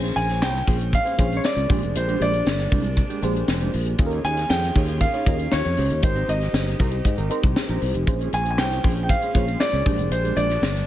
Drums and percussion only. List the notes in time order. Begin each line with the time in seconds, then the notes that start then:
0.04 closed hi-hat
0.16 closed hi-hat
0.29 snare, closed hi-hat
0.42 snare, tambourine
0.55 snare, closed hi-hat
0.67 kick, open hi-hat
0.81 closed hi-hat
0.93 kick, closed hi-hat
1.07 closed hi-hat
1.19 kick, closed hi-hat
1.33 closed hi-hat
1.44 snare, tambourine
1.57 closed hi-hat
1.70 kick, open hi-hat
1.83 closed hi-hat
1.95 closed hi-hat
2.09 closed hi-hat
2.21 closed hi-hat
2.34 closed hi-hat
2.46 snare, tambourine
2.60 snare, closed hi-hat
2.72 kick, open hi-hat
2.84 closed hi-hat
2.97 kick, closed hi-hat
3.10 closed hi-hat
3.23 closed hi-hat
3.36 closed hi-hat
3.48 snare, tambourine
3.61 closed hi-hat
3.73 open hi-hat
3.86 closed hi-hat
3.98 kick, closed hi-hat
4.11 closed hi-hat
4.24 closed hi-hat
4.37 snare, closed hi-hat
4.50 snare, tambourine
4.63 snare, closed hi-hat
4.75 kick, open hi-hat
4.88 closed hi-hat
5.01 kick, closed hi-hat
5.14 closed hi-hat
5.26 kick, closed hi-hat
5.39 closed hi-hat
5.52 snare, tambourine
5.64 closed hi-hat
5.77 open hi-hat
5.90 closed hi-hat
6.02 kick, closed hi-hat
6.16 closed hi-hat
6.29 closed hi-hat
6.41 snare, closed hi-hat
6.54 snare, tambourine
6.67 snare, closed hi-hat
6.79 kick, open hi-hat
6.91 closed hi-hat
7.05 kick, closed hi-hat
7.18 closed hi-hat
7.30 closed hi-hat
7.43 kick, closed hi-hat
7.56 snare, tambourine
7.68 closed hi-hat
7.82 open hi-hat
7.94 closed hi-hat
8.07 kick, closed hi-hat
8.21 closed hi-hat
8.33 closed hi-hat
8.46 closed hi-hat
8.58 snare, tambourine
8.71 snare, closed hi-hat
8.84 kick, open hi-hat
8.97 closed hi-hat
9.09 kick, closed hi-hat
9.22 closed hi-hat
9.35 kick, closed hi-hat
9.48 closed hi-hat
9.60 snare, tambourine
9.73 closed hi-hat
9.86 kick, open hi-hat
9.99 closed hi-hat
10.11 closed hi-hat
10.25 closed hi-hat
10.37 closed hi-hat
10.50 snare, closed hi-hat
10.63 snare, tambourine
10.76 snare, closed hi-hat